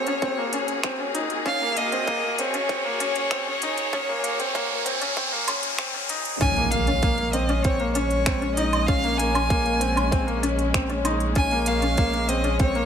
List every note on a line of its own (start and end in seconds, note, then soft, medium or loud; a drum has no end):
0.00 6.38 A#1 medium
0.00 6.37 A#3 medium
0.00 6.37 F#4 medium
0.00 6.37 G#4 medium
0.00 1.16 C#5 medium
0.00 riser medium
0.07 0.21 C#4 medium
0.07 closed hi-hat soft
0.22 0.36 C4 medium
0.22 kick loud
0.22 closed hi-hat soft
0.38 0.51 A#3 medium
0.53 0.80 C#4 medium
0.53 closed hi-hat medium
0.68 closed hi-hat soft
0.83 0.98 C4 medium
0.83 finger snap medium
0.83 kick loud
0.83 closed hi-hat soft
1.00 1.13 C#4 medium
1.15 1.42 D#4 medium
1.15 closed hi-hat medium
1.30 closed hi-hat soft
1.46 1.59 C#4 medium
1.46 1.79 F5 loud
1.46 kick medium
1.46 closed hi-hat soft
1.61 1.75 A#3 medium
1.77 1.90 A#3 medium
1.77 2.41 D#5 loud
1.77 closed hi-hat medium
1.92 2.06 C4 medium
1.92 closed hi-hat soft
2.07 2.21 A#3 medium
2.07 kick loud
2.07 closed hi-hat soft
2.24 2.37 A#3 medium
2.38 2.52 C4 medium
2.38 5.79 C#5 medium
2.38 closed hi-hat medium
2.54 2.68 C#4 medium
2.54 closed hi-hat soft
2.69 2.83 C4 medium
2.69 kick medium
2.69 closed hi-hat soft
2.85 2.98 A#3 medium
3.00 3.27 C#4 medium
3.00 closed hi-hat medium
3.15 closed hi-hat soft
3.31 3.45 C4 medium
3.31 finger snap medium
3.31 kick medium
3.31 closed hi-hat soft
3.47 3.61 C#4 medium
3.62 3.90 D#4 medium
3.62 closed hi-hat medium
3.77 closed hi-hat soft
3.93 4.07 C#4 medium
3.93 kick loud
3.93 closed hi-hat soft
4.09 4.22 A#3 medium
4.24 4.38 A#3 medium
4.24 closed hi-hat medium
4.40 4.53 C4 medium
4.40 closed hi-hat soft
4.55 4.69 A#3 medium
4.55 kick loud
4.55 closed hi-hat soft
4.71 4.84 A#3 medium
4.85 4.99 C4 medium
4.85 closed hi-hat medium
5.01 5.15 C#4 medium
5.01 closed hi-hat soft
5.17 5.31 C4 medium
5.17 kick loud
5.17 closed hi-hat soft
5.32 5.46 A#3 medium
5.48 5.75 C#4 medium
5.48 closed hi-hat medium
5.48 low woodblock medium
5.63 closed hi-hat soft
5.79 5.92 C4 medium
5.79 finger snap medium
5.79 kick loud
5.79 closed hi-hat soft
5.94 6.08 C#4 medium
6.09 6.37 D#4 medium
6.09 closed hi-hat medium
6.25 closed hi-hat soft
6.41 12.85 A#1 medium
6.41 12.85 G#3 medium
6.41 12.85 A#3 medium
6.41 6.54 C#4 loud
6.41 12.85 C#4 medium
6.41 6.72 G#5 loud
6.41 kick loud
6.41 closed hi-hat soft
6.41 impact medium
6.56 6.70 A#3 medium
6.56 closed hi-hat soft
6.71 6.86 A#3 medium
6.71 7.34 F5 loud
6.71 closed hi-hat medium
6.87 7.01 C#4 medium
6.87 closed hi-hat soft
7.02 7.16 A#3 medium
7.02 kick loud
7.02 closed hi-hat soft
7.18 7.32 A#3 medium
7.18 closed hi-hat soft
7.32 7.47 C4 medium
7.32 7.64 D#5 medium
7.32 closed hi-hat medium
7.49 7.63 C#4 medium
7.49 closed hi-hat soft
7.63 7.78 C4 medium
7.63 7.92 C#5 medium
7.63 kick loud
7.63 closed hi-hat soft
7.80 7.94 A#3 medium
7.80 closed hi-hat soft
7.93 8.22 C#4 medium
7.93 8.52 C#5 medium
7.93 closed hi-hat medium
8.11 closed hi-hat soft
8.26 8.40 C4 medium
8.26 finger snap medium
8.26 kick loud
8.26 closed hi-hat soft
8.42 8.55 C#4 medium
8.42 closed hi-hat soft
8.55 8.84 D#4 medium
8.55 8.88 D#5 medium
8.55 closed hi-hat medium
8.73 closed hi-hat soft
8.73 low woodblock medium
8.87 9.02 C#4 medium
8.87 9.20 F5 loud
8.87 kick loud
8.87 closed hi-hat soft
9.04 9.17 A#3 medium
9.04 closed hi-hat soft
9.18 9.32 A#3 medium
9.18 10.43 G#5 loud
9.18 closed hi-hat medium
9.34 9.48 C#4 medium
9.34 closed hi-hat soft
9.34 low woodblock medium
9.50 9.64 A#3 medium
9.50 kick loud
9.50 closed hi-hat soft
9.66 9.79 A#3 medium
9.66 closed hi-hat soft
9.80 9.94 C4 medium
9.80 closed hi-hat medium
9.96 10.10 C#4 medium
9.96 closed hi-hat soft
9.96 low woodblock medium
10.12 10.25 C4 medium
10.12 kick loud
10.12 closed hi-hat soft
10.27 10.41 A#3 medium
10.27 closed hi-hat soft
10.43 10.70 C#4 medium
10.43 closed hi-hat medium
10.59 closed hi-hat soft
10.74 10.87 C4 medium
10.74 finger snap medium
10.74 kick loud
10.74 closed hi-hat soft
10.89 11.03 C#4 medium
10.89 closed hi-hat soft
11.05 11.32 D#4 medium
11.05 closed hi-hat medium
11.05 low woodblock medium
11.20 closed hi-hat soft
11.35 11.49 C#4 medium
11.35 11.69 G#5 loud
11.35 kick loud
11.35 closed hi-hat soft
11.51 11.65 A#3 medium
11.51 closed hi-hat soft
11.66 11.80 A#3 medium
11.66 12.30 F5 loud
11.66 closed hi-hat medium
11.82 11.96 C#4 medium
11.82 closed hi-hat soft
11.97 12.11 A#3 medium
11.97 kick loud
11.97 closed hi-hat soft
12.13 12.27 A#3 medium
12.13 closed hi-hat soft
12.29 12.42 C4 medium
12.29 12.60 D#5 medium
12.29 closed hi-hat medium
12.44 12.58 C#4 medium
12.44 closed hi-hat soft
12.59 12.73 C4 medium
12.59 12.85 C#5 medium
12.59 kick loud
12.59 closed hi-hat soft
12.75 12.85 A#3 medium
12.75 closed hi-hat soft